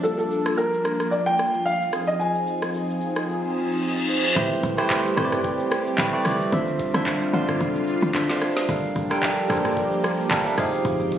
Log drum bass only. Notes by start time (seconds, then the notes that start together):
4.36 A1
4.63 A1
5.17 G1
5.98 A1
6.25 C2
6.53 D2
6.94 D2
7.33 D2
7.61 C2
8.02 D2
8.69 G1
8.96 G1
9.50 F1
10.31 G1
10.58 F1
10.85 F1